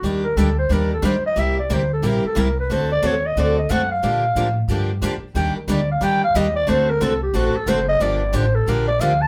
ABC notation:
X:1
M:4/4
L:1/8
Q:"Swing" 1/4=181
K:Dphr
V:1 name="Clarinet"
G B A c B A c e | =e d c A B A B =B | c d ^c e d e ^f =f- | f4 z4 |
g B d f g f e d | c B A G ^F A c e | d2 c A B d f a |]
V:2 name="Steel-string acoustic guitar"
[E,G,B,DG] z [E,G,B,DG] z [E,G,B,DG] z [E,G,B,DG] z | [C,G,B,=EG] z [C,G,B,EG] z [C,G,B,EG] z [C,G,B,EG] z | [D,A,C^FA] z [D,A,CFA] z [D,A,CFA] z [D,A,CFA] z | [D,F,B,DG] z [D,F,B,DG] z [D,F,B,DG] z [D,F,B,DG] z |
[E,G,B,DG] z [E,G,B,DG] z [E,G,B,DG] z [E,G,B,DG] z | [D,A,C^FA] z [D,A,CFA] z [D,A,CFA] z [D,A,CFA] z | [D,F,B,DG] z [D,F,B,DG] z [D,F,B,DG] z [D,F,B,DG] z |]
V:3 name="Steel-string acoustic guitar"
[E,G,B,DG] z [E,G,B,DG] z [E,G,B,DG] z [E,G,B,DG] z | [C,G,B,=EG] z [C,G,B,EG] z [C,G,B,EG] z [C,G,B,EG] z | [D,A,C^FA] z [D,A,CFA] z [D,A,CFA] z [D,A,CFA] z | [D,F,B,DG] z [D,F,B,DG] z [D,F,B,DG] z [D,F,B,DG] z |
[E,G,B,DG] z [E,G,B,DG] z [E,G,B,DG] z [E,G,B,DG] z | [D,A,C^FA] z [D,A,CFA] z [D,A,CFA] z [D,A,CFA] z | [D,F,B,DG] z [D,F,B,DG] z [D,F,B,DG] z [D,F,B,DG] z |]
V:4 name="Upright bass" clef=bass
E,,2 D,,2 E,,2 F,,2 | C,,2 D,,2 B,,, z C,,2 | D,,2 E,,2 D,,2 ^F,,2 | B,,2 A,,2 G,,2 F,, z |
E,, z D,,2 F,,2 E,,2 | D,,2 C,,2 A,,, z ^F,,,2 | G,,,2 A,,,2 B,,,2 D,,2 |]